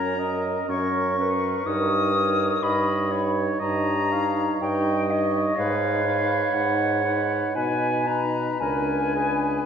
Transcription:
Already playing: bassoon F#2, french horn C#4, oboe A#4, clarinet C#5, flute A#5
0.17 french horn C#4, oboe A#4, clarinet D#5
0.68 bassoon F#2, french horn C#4, oboe A#4, clarinet C#5, flute C#6
1.18 french horn C#4, oboe A#4, clarinet B4
1.66 bassoon G2, french horn D#4, clarinet A#4, oboe C#5, flute D#6
2.14 french horn D#4, oboe C#5
2.62 bassoon G2, french horn D#4, oboe C#5, clarinet D#5, flute B5
3.12 french horn D#4, clarinet C#5, oboe C#5
3.60 bassoon G2, french horn D#4, oboe C#5, clarinet D#5, flute A#5
4.12 french horn D#4, oboe C#5, clarinet F5
4.60 bassoon G2, french horn D#4, oboe C#5, clarinet D#5, flute G5
5.09 french horn D#4, oboe C#5, flute D#5
5.56 bassoon G#2, french horn D#4, oboe B4, clarinet C#5, flute F5
6.04 french horn D#4, oboe B4
6.53 bassoon G#2, french horn D#4, oboe B4, flute F#5
7.04 french horn D#4, oboe B4
7.55 bassoon B2, french horn D#4, oboe B4, clarinet B4, flute G#5
8.07 french horn D#4, oboe B4, flute A#5
8.60 bassoon C#2, french horn D4, clarinet A#4, oboe B4, flute G#5
9.15 french horn D4, clarinet G#4, oboe B4

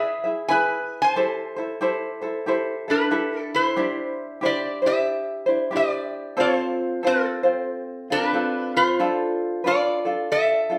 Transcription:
Already playing: ukulele E4 G#4 B4 E5, resonator guitar played with a steel bar G#4 E5
0.24 ukulele E4 G#4 E5
0.48 ukulele E4 G#4 B4 E5, resonator guitar played with a steel bar B4 G#5
1.02 resonator guitar played with a steel bar C5 A5
1.16 ukulele E4 G4 A4 C5
1.56 ukulele E4 A4 C5
1.81 ukulele E4 G4 A4 C5
2.21 ukulele E4 A4 C5
2.46 ukulele E4 G4 A4 C5
2.88 resonator guitar played with a steel bar D4 B4, ukulele E4 A4
3.11 ukulele E4 G4 A4
3.40 resonator guitar played with a steel bar A4
3.54 resonator guitar played with a steel bar E4 C5
3.76 ukulele D4 E4 G4 C5
4.41 ukulele D4 E4 G4 C5
4.45 resonator guitar played with a steel bar G4 D5
4.82 ukulele D4 E4 C5
4.86 resonator guitar played with a steel bar G4 E5
5.46 ukulele D4 E4 C5
5.71 ukulele D4 E4 G4 C5
5.76 resonator guitar played with a steel bar G4 D5
6.37 ukulele C4 F4 A4 C5, resonator guitar played with a steel bar F4
6.41 resonator guitar played with a steel bar C5
7.03 ukulele C4 F4 A4 C5, resonator guitar played with a steel bar C4
7.07 resonator guitar played with a steel bar A4
7.43 ukulele C4 F4 C5
8.10 ukulele C4 F4, resonator guitar played with a steel bar D4 B4
8.33 ukulele C4 F4 A4
8.77 resonator guitar played with a steel bar F4 C5
8.99 ukulele D4 F4 A4
9.64 ukulele D4 F4 A4 B4, resonator guitar played with a steel bar F4 D5
10.05 ukulele D4 F4 A4
10.32 resonator guitar played with a steel bar A4 E5
10.70 ukulele D4 F4 A4

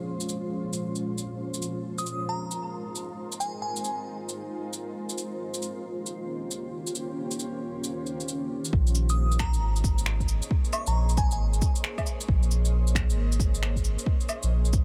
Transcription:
Already playing: ambient pad A#2 F3 G#3 C#4 F4 C5
0.20 shaker
0.29 shaker
0.73 shaker
0.95 shaker
1.18 shaker
1.54 shaker
1.62 ambient pad G#3 D#4 A#4 C5, shaker
1.98 synth bell D#6, shaker
2.06 shaker
2.29 synth bell A#5
2.51 shaker
2.95 shaker
3.32 shaker
3.40 synth bell G#5, shaker
3.62 synth bell G#5
3.76 shaker
3.84 shaker
4.29 shaker
4.73 shaker
5.09 shaker
5.18 ambient pad D#3 A#3 C#4 G4, shaker
5.54 shaker
5.62 shaker
6.06 shaker
6.51 shaker
6.87 shaker
6.95 shaker
7.31 shaker
7.39 shaker
7.84 shaker
8.06 shaker
8.20 shaker
8.28 shaker
8.65 shaker
8.73 sub bass A#1, ambient pad A#3 G#4 C5 C#5 D#5, kick
8.87 shaker
8.95 cabasa
9.09 synth bell D#6, shaker
9.32 shaker
9.39 synth bell A#5, finger snap, kick, cabasa
9.54 sub bass G#1, shaker
9.76 cabasa, shaker
9.84 sub bass G#1, kick, cabasa
9.98 shaker
10.06 finger snap
10.20 kick, shaker
10.28 cabasa
10.42 shaker
10.51 kick
10.65 shaker
10.73 synth bell C#6, cabasa, low woodblock
10.87 sub bass A#1, synth bell A#5, shaker
11.09 shaker
11.17 synth bell G#5, kick, cabasa
11.31 sub bass G#1, synth bell G#5, shaker
11.54 shaker
11.62 kick, cabasa
11.76 shaker
11.84 finger snap
11.98 kick, low woodblock, shaker
12.06 cabasa
12.21 shaker
12.28 sub bass A#1, kick
12.43 shaker
12.51 cabasa
12.65 shaker
12.87 shaker
12.95 finger snap, kick, cabasa
13.10 sub bass G#1, shaker
13.32 cabasa, shaker
13.40 sub bass G#1, kick, cabasa
13.54 shaker
13.63 finger snap
13.76 kick, shaker
13.85 cabasa
13.99 shaker
14.06 kick
14.21 shaker
14.29 cabasa, low woodblock
14.43 sub bass A#1, shaker
14.65 shaker
14.73 kick, cabasa

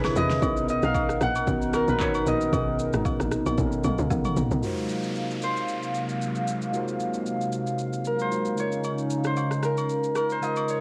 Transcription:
Already playing: log drum bass C2, tine electric piano C3 C4 D4 E4 B4, analog synth pad C3 E4 B4, harp G#4 B4 C#5 D#5
0.04 cross-stick, snare, high agogo, shaker
0.16 log drum bass E2, harp D#5, shaker
0.30 snare, shaker
0.41 log drum bass B1, tine electric piano B2 B3 C#4 D#4 A#4, analog synth pad B3 D#4 A#4, kick, high agogo, shaker
0.57 shaker
0.69 harp D#5, shaker
0.83 log drum bass B1, harp F5, cross-stick, shaker
0.95 kick, high agogo, low woodblock, shaker
1.09 cross-stick, shaker
1.21 log drum bass A#1, harp F#5, cross-stick, shaker
1.35 high agogo, shaker
1.46 log drum bass B1, tine electric piano D#3 B3 C#4 D#4 F#4, kick, shaker
1.62 shaker
1.73 harp A#4, cross-stick, high agogo, shaker
1.88 log drum bass A#1, harp B4, shaker
2.00 harp C#5, kick, clap, shaker
2.14 high agogo, shaker
2.26 log drum bass A#1, harp D#5, shaker
2.41 shaker
2.51 log drum bass B1, tine electric piano B2 B3 C#4 D#4 G#4, kick, high agogo, shaker
2.61 tine electric piano A#4
2.79 shaker
2.93 log drum bass G#1, cross-stick, shaker
3.05 kick, high agogo, low woodblock, shaker
3.20 log drum bass A#1, cross-stick, shaker
3.31 cross-stick, shaker
3.46 log drum bass A#1, high agogo, shaker
3.57 log drum bass A#1, tine electric piano B2 B3 C#4 D#4 A4, kick, high tom, shaker
3.66 tine electric piano A#4
3.72 shaker
3.84 log drum bass B1, tine electric piano F5, mid tom, high agogo, shaker
3.98 log drum bass C#2, shaker
4.11 log drum bass B1, tine electric piano F#5, kick, mid tom, low woodblock, shaker
4.25 mid tom, high agogo, shaker
4.37 log drum bass A#1, tine electric piano A#5, floor tom, shaker
4.51 log drum bass B1, floor tom, shaker
4.60 analog synth pad C3 F#3 G#3 A#3 F5, tine electric piano G#3 D#4 F4 F#4, downlifter, shaker
4.65 tine electric piano A#4 C5
4.78 shaker
4.89 shaker
5.03 shaker
5.16 shaker
5.31 shaker
5.42 harp C5, shaker
5.56 shaker
5.68 shaker
5.83 shaker
5.94 shaker
6.09 shaker
6.22 shaker
6.35 shaker
6.47 shaker
6.62 shaker
6.71 tine electric piano G#3 D#4 F4 F#4, shaker
6.76 tine electric piano A#4 C5
6.88 shaker
7.00 shaker
7.14 shaker
7.26 shaker
7.41 shaker
7.52 shaker
7.67 shaker
7.79 shaker
7.93 shaker
8.05 harp A#4, shaker
8.19 harp C5, shaker
8.30 tine electric piano G#3 D#4 F4 F#4 A#4 C5, shaker
8.45 shaker
8.55 tine electric piano C#3 G#3 D#4, analog synth pad C#3 C#4 D#4, shaker
8.60 tine electric piano F4 D#5, harp C#5
8.72 shaker
8.84 high agogo, shaker
8.98 shaker
9.10 shaker
9.24 harp C5, cross-stick, shaker
9.37 high agogo, low woodblock, shaker
9.51 cross-stick, shaker
9.63 harp A#4, cross-stick, shaker
9.77 high agogo, shaker
9.89 shaker
10.04 shaker
10.15 harp A#4, cross-stick, high agogo, shaker
10.30 harp C5, shaker
10.41 tine electric piano C#3 G#3 D#4 F4 C5, harp D#5, low woodblock, shaker
10.56 high agogo, shaker
10.68 harp C#5, shaker

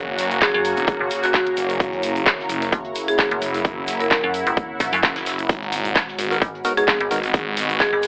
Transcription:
Already playing: detuned saw bass F#1, analog synth pad C#3 A#3 F#4, ambient pad F#4 C#5 G#5 A#5
0.18 detuned saw bass F#1, snare, closed hi-hat, open hi-hat, shaker
0.31 closed hi-hat, shaker
0.41 marimba G#4, kick, snare, clap, closed hi-hat, shaker
0.54 fm bass F#2, marimba G#4
0.65 closed hi-hat, open hi-hat, shaker
0.77 detuned saw bass E1, closed hi-hat, shaker
0.87 kick, closed hi-hat, shaker
1.00 fm bass F#1
1.11 closed hi-hat, open hi-hat, shaker
1.23 marimba F#4, clap, closed hi-hat, shaker
1.34 marimba F#4, kick, snare, clap, closed hi-hat, shaker
1.47 closed hi-hat
1.57 detuned saw bass F#1, closed hi-hat, open hi-hat, shaker
1.70 closed hi-hat, shaker
1.80 detuned saw bass F#1, analog synth pad E4, kick, closed hi-hat, shaker
1.93 closed hi-hat
2.03 closed hi-hat, open hi-hat, shaker
2.16 ambient pad F#5, closed hi-hat, shaker
2.26 kick, snare, clap, closed hi-hat, shaker
2.39 snare
2.49 detuned saw bass F#1, closed hi-hat, open hi-hat, shaker
2.62 snare, closed hi-hat, shaker
2.72 fm bass F#1, kick, closed hi-hat, shaker
2.85 closed hi-hat
2.95 open hi-hat, shaker
3.08 marimba G#4, closed hi-hat, shaker
3.18 detuned saw bass F#1, kick, snare, clap, closed hi-hat, shaker
3.31 fm bass F#1, closed hi-hat
3.42 detuned saw bass F#1, closed hi-hat, open hi-hat, shaker
3.54 snare, closed hi-hat, shaker
3.65 detuned saw bass F#1, kick, closed hi-hat, shaker
3.87 detuned saw bass F#1, snare, closed hi-hat, open hi-hat, shaker
4.00 marimba A#4, closed hi-hat, shaker
4.11 marimba A#4, kick, snare, clap, closed hi-hat, shaker
4.24 fm bass F#2
4.34 closed hi-hat, open hi-hat, shaker
4.47 fm bass E1, closed hi-hat, shaker
4.57 kick, closed hi-hat, shaker
4.80 fm bass A#1, kick, closed hi-hat, open hi-hat, shaker
4.93 fm bass F#2, clap, closed hi-hat, shaker
5.03 detuned saw bass F#1, kick, snare, clap, closed hi-hat, shaker
5.16 detuned saw bass F#1, snare, closed hi-hat
5.26 snare, closed hi-hat, open hi-hat, shaker
5.39 closed hi-hat, shaker
5.49 detuned saw bass G#1, analog synth pad B2 G#3 F#4, ambient pad G#4, kick, closed hi-hat, shaker
5.63 ambient pad B5, closed hi-hat
5.71 ambient pad D#5, closed hi-hat, open hi-hat, shaker
5.85 closed hi-hat, shaker
5.95 kick, snare, clap, closed hi-hat, shaker
6.08 snare
6.18 detuned saw bass G#1, closed hi-hat, open hi-hat, shaker
6.31 synth stab B3 D#4 F#4 A#4, snare, closed hi-hat, shaker
6.42 fm bass G#1, kick, closed hi-hat, shaker
6.55 closed hi-hat
6.65 synth stab B3 D#4 F#4 A#4, closed hi-hat, open hi-hat, shaker
6.77 synth stab B3 D#4 F#4 C#5, marimba G#4, closed hi-hat, shaker
6.88 detuned saw bass G#1, kick, snare, clap, closed hi-hat, shaker
7.00 fm bass G#1, closed hi-hat
7.11 detuned saw bass G#1, synth stab B3 D#4 F#4 A#4, closed hi-hat, open hi-hat, shaker
7.24 snare, closed hi-hat, shaker
7.34 detuned saw bass G#1, kick, closed hi-hat, shaker
7.57 detuned saw bass G#1, snare, closed hi-hat, open hi-hat, shaker
7.70 closed hi-hat, shaker
7.80 marimba G#4, kick, snare, clap, closed hi-hat, shaker
7.93 fm bass G#1, marimba G#4
8.03 closed hi-hat, open hi-hat, shaker

